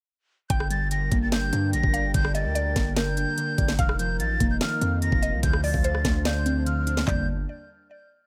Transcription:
0.50 1.09 G1 loud
0.50 0.90 D3 medium
0.50 3.75 G3 medium
0.50 3.75 D4 medium
0.50 5.39 A#4 medium
0.50 3.75 G5 medium
0.50 1.90 G5 loud
0.50 0.68 G6 medium
0.50 kick loud
0.50 closed hi-hat loud
0.60 cross-stick loud
0.70 1.73 G3 medium
0.70 0.88 A6 medium
0.70 closed hi-hat medium
0.91 1.31 D3 medium
0.91 1.20 A#6 medium
0.91 closed hi-hat medium
1.12 1.51 G1 loud
1.12 2.15 A#3 medium
1.12 kick medium
1.12 closed hi-hat medium
1.22 1.31 A6 medium
1.32 1.72 D3 medium
1.32 1.71 G6 medium
1.32 snare loud
1.32 closed hi-hat medium
1.53 1.75 G2 loud
1.53 2.55 D4 medium
1.53 closed hi-hat medium
1.73 1.83 A#1 loud
1.73 2.13 D3 medium
1.73 2.12 A#6 medium
1.73 closed hi-hat medium
1.83 2.13 G1 loud
1.83 kick loud
1.93 2.96 D5 medium
1.93 2.13 F5 medium
1.93 closed hi-hat medium
2.14 2.47 G1 loud
2.14 2.54 D3 medium
2.14 2.32 G6 loud
2.14 kick loud
2.14 closed hi-hat loud
2.25 cross-stick loud
2.35 3.38 G3 medium
2.35 2.54 D#5 medium
2.35 2.93 A6 medium
2.35 closed hi-hat medium
2.45 2.74 D2 loud
2.55 2.94 D3 medium
2.55 2.94 D5 medium
2.55 closed hi-hat medium
2.76 3.25 G1 loud
2.76 3.79 A#3 medium
2.76 kick loud
2.76 snare medium
2.76 closed hi-hat medium
2.95 3.36 D3 loud
2.95 3.75 A#4 medium
2.95 3.75 G6 loud
2.95 snare loud
2.95 closed hi-hat medium
3.17 3.79 D4 medium
3.17 closed hi-hat medium
3.38 3.79 D3 medium
3.38 closed hi-hat medium
3.58 3.78 G1 loud
3.58 3.79 D5 medium
3.58 kick medium
3.58 closed hi-hat medium
3.68 snare medium
3.79 4.21 F1 loud
3.79 4.18 D#3 loud
3.79 5.42 F3 medium
3.79 5.41 D#4 medium
3.79 5.19 F5 loud
3.79 7.04 F5 medium
3.79 3.97 F6 medium
3.79 kick loud
3.79 closed hi-hat loud
3.89 cross-stick loud
3.99 5.02 F3 medium
3.99 4.17 G6 loud
3.99 closed hi-hat medium
4.20 4.39 A1 loud
4.20 4.60 D#3 medium
4.20 4.49 A6 medium
4.20 closed hi-hat medium
4.40 4.60 F1 loud
4.40 5.43 A#3 medium
4.40 kick loud
4.40 closed hi-hat medium
4.51 4.60 G6 medium
4.61 5.02 D#3 medium
4.61 4.99 F6 loud
4.61 snare loud
4.61 closed hi-hat medium
4.81 5.11 F2 loud
4.81 5.43 C4 medium
4.81 closed hi-hat medium
5.02 5.44 D#3 medium
5.02 5.41 A#6 medium
5.02 closed hi-hat medium
5.12 5.34 F1 loud
5.12 kick loud
5.22 5.43 D#4 medium
5.22 5.42 D#5 medium
5.22 closed hi-hat medium
5.33 5.43 C2 loud
5.43 5.73 D2 loud
5.43 5.83 D3 loud
5.43 7.06 D3 medium
5.43 7.06 D4 medium
5.43 7.06 C5 medium
5.43 5.61 G6 loud
5.43 kick loud
5.43 closed hi-hat loud
5.53 cross-stick loud
5.63 6.66 F3 medium
5.63 5.83 D5 medium
5.63 6.22 A6 medium
5.63 open hi-hat medium
5.74 6.04 D2 loud
5.74 kick loud
5.84 6.24 D3 medium
5.84 6.23 C5 medium
5.84 closed hi-hat medium
5.95 cross-stick medium
6.04 7.04 D2 loud
6.04 7.07 A3 medium
6.04 kick medium
6.04 snare medium
6.04 closed hi-hat medium
6.25 6.65 D3 medium
6.25 6.64 D5 medium
6.25 6.64 G6 medium
6.25 snare loud
6.25 closed hi-hat medium
6.46 7.07 C4 medium
6.46 closed hi-hat medium
6.66 7.06 D3 medium
6.66 7.05 F6 medium
6.66 closed hi-hat medium
6.87 7.06 D4 medium
6.87 closed hi-hat medium
6.97 snare medium
7.07 7.46 G1 loud
7.07 7.27 D3 medium
7.07 7.27 G3 medium
7.07 7.27 A#3 medium
7.07 7.27 D4 loud
7.07 7.27 D5 medium
7.07 7.27 G6 medium
7.07 kick loud
7.07 clap loud
7.07 floor tom loud

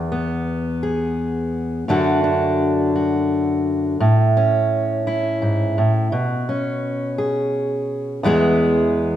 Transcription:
0.00 1.88 E2 medium
0.12 1.88 B3 medium
0.83 1.84 G#4 medium
1.88 3.96 F#2 medium
1.88 4.01 D3 medium
1.88 3.96 A3 medium
1.88 2.23 D4 medium
1.88 2.94 F#4 medium
2.24 3.96 D4 medium
2.96 3.97 F#4 medium
4.00 5.77 A2 medium
4.37 6.08 C#4 medium
5.07 6.12 E4 medium
5.42 5.77 G#2 medium
5.78 6.12 A2 medium
6.12 8.19 B2 medium
6.49 8.20 C#4 medium
7.18 8.20 G#4 soft
8.23 9.16 E2 medium
8.23 9.16 E3 medium
8.23 9.16 G#3 medium
8.23 9.16 B3 medium
8.23 9.16 G#4 medium

